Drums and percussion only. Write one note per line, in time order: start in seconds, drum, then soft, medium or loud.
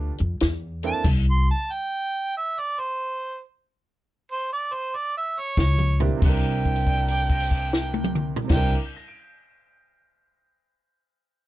0.18 closed hi-hat medium
0.40 snare loud
0.40 closed hi-hat medium
0.83 closed hi-hat medium
1.04 kick loud
1.04 closed hi-hat medium
1.04 crash medium
5.57 kick medium
5.57 snare medium
5.79 mid tom medium
6.00 floor tom medium
6.22 kick loud
6.22 crash medium
6.65 kick medium
6.65 crash soft
6.76 crash soft
6.87 kick medium
6.87 crash soft
7.08 crash soft
7.29 kick medium
7.29 crash soft
7.40 crash soft
7.51 kick medium
7.51 crash medium
7.73 snare medium
7.94 high tom medium
8.04 mid tom medium
8.15 mid tom medium
8.36 floor tom medium
8.49 kick loud
8.49 snare loud
8.49 crash medium